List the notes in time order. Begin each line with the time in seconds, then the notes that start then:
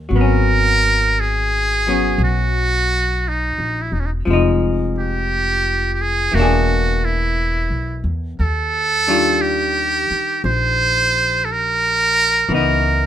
Already playing: A#3 C#4 G4
0.09 G#1 F#3
0.16 B3 A#4
0.21 C#4
1.20 G#4
1.87 F#3 B3 C#4
2.18 B1
2.24 F#4
3.28 D#4
3.58 A#1
3.82 E4
3.92 E1 D#4
4.00 C#4
4.06 D#4
4.25 F1 F3
4.30 G#3 D#4
4.99 G4
5.94 G4
6.01 G#4
6.32 E1 E3 A#3 F#4
6.39 D4 G#4
7.05 E4
7.70 B1
8.04 E2
8.39 D#2 A4
9.08 D#3 G3 D4 F4
9.41 G4
10.11 muted upright bass stroke
10.44 A#1 C5
11.45 A4
11.52 A#4
12.49 C#2 E3 B3
12.54 D#4 A#4